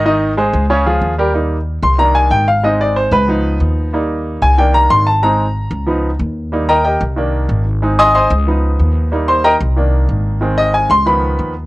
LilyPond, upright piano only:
<<
  \new Staff \with { instrumentName = "Upright piano" } { \time 4/4 \key ees \major \tempo 4 = 185 <ees ees' ees''>4 <aes aes' c''>4 <des des' des''>8 <f f' aes'>4 <g g' bes'>8 | r4. c'''8 bes''8 aes''8 g''8 f''8 | ees''8 d''8 c''8 ces''4. r4 | r4. aes''8 g''8 bes''8 c'''8 a''8 |
bes''2. r4 | r8 <bes' ees'' g'' bes''>8 <g' bes' ees'' g''>8 r2 r8 | r8 <ees'' aes'' c''' ees'''>8 <c'' ees'' aes'' c'''>8 r2 r8 | r8 <c'' c'''>8 <bes' ees'' g'' bes''>8 r2 r8 |
r8 ees''8 aes''8 c'''8 ces'''4. r8 | }
  \new Staff \with { instrumentName = "Upright piano" } { \time 4/4 \key ees \major r1 | <g bes ees'>8 r4. <ees bes d'>4. r8 | <aes c' ees'>2 <f ces' ees'>2 | <g bes ees'>2 <ees bes d'>4. r8 |
<aes c' ees'>8 r4. <f ces' ees'>8 r4. | <g bes ees'>8 r4. <ees bes d'>4. r8 | <aes c' ees'>4. r8 <f ces' ees'>2 | <g bes ees'>4. r8 <ees bes d'>2 |
<ees aes c'>4. r8 <ees f ces'>4. r8 | }
>>